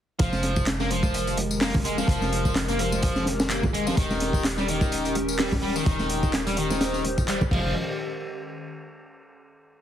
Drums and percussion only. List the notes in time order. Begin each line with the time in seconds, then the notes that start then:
0.19 kick, closed hi-hat, tambourine
0.33 snare, tambourine, high conga
0.43 snare, closed hi-hat
0.56 kick, tambourine
0.66 snare, clap, closed hi-hat, tambourine, high conga
0.80 snare, tambourine
0.91 closed hi-hat
1.03 kick, tambourine, high conga
1.14 closed hi-hat, tambourine
1.27 closed hi-hat, tambourine
1.37 closed hi-hat, high conga
1.51 tambourine
1.61 snare, clap, open hi-hat, tambourine
1.74 kick, tambourine, high conga, low conga
1.85 closed hi-hat
1.98 snare, tambourine
2.08 kick, closed hi-hat, tambourine
2.21 snare, tambourine, high conga
2.33 closed hi-hat
2.45 kick, tambourine
2.55 snare, clap, closed hi-hat, tambourine, high conga
2.68 closed hi-hat, tambourine
2.79 closed hi-hat
2.92 tambourine, high conga
3.02 kick, closed hi-hat, tambourine
3.16 snare, tambourine
3.26 snare, closed hi-hat, high conga
3.40 snare, tambourine
3.50 clap, closed hi-hat, tambourine
3.63 kick, tambourine, high conga, low conga
3.74 closed hi-hat
3.87 snare, tambourine
3.97 kick, closed hi-hat, tambourine
4.10 snare, tambourine, high conga
4.20 snare, closed hi-hat
4.33 kick, tambourine
4.44 snare, clap, closed hi-hat, tambourine, high conga
4.58 snare, tambourine
4.68 closed hi-hat
4.81 kick, tambourine, high conga
4.92 closed hi-hat, tambourine
5.05 closed hi-hat, tambourine
5.15 closed hi-hat, high conga
5.28 tambourine
5.39 snare, clap, open hi-hat
5.52 kick, tambourine, high conga, low conga
5.76 tambourine
5.86 kick, closed hi-hat, tambourine
5.99 snare, tambourine, high conga
6.09 closed hi-hat
6.23 kick, tambourine
6.33 snare, clap, closed hi-hat, tambourine, high conga
6.47 closed hi-hat, tambourine
6.57 closed hi-hat
6.70 snare, tambourine, high conga
6.81 snare, closed hi-hat, tambourine
6.93 snare, tambourine
7.04 closed hi-hat, high conga
7.18 kick, tambourine
7.28 clap, closed hi-hat, tambourine
7.41 kick, tambourine, high conga, low conga
7.51 kick, crash